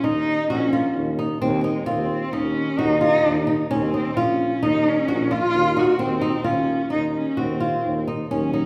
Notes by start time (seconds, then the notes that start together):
0.04 D#2 D#4
0.50 A#1 C#4 F#4
0.73 F4
0.96 D#2
1.19 D#4
1.42 D#2 G#3 C4
1.64 D#4
1.86 D#2 C4 F4
2.33 D#2 C#4 D#4
2.78 D#2 D#4 F#4
3.01 D#4 F4
3.25 D#2
3.47 D#4
3.71 D#2 C4 C#4
3.94 D#4
4.17 A#1 C#4 F4
4.63 D#2 D#4
4.88 C#4
5.08 A#1 F#4
5.31 F4
5.54 D#2
5.76 D#4 F#4
5.99 D#2 C4
6.21 D#4
6.44 D#2 C#4 F4
6.90 D#2 D#4
7.15 C#4
7.37 D#2 C4 F#4
7.60 F4
7.85 D#2
8.08 D#4
8.30 D#2 F#3 C#4
8.34 C#4
8.53 D#4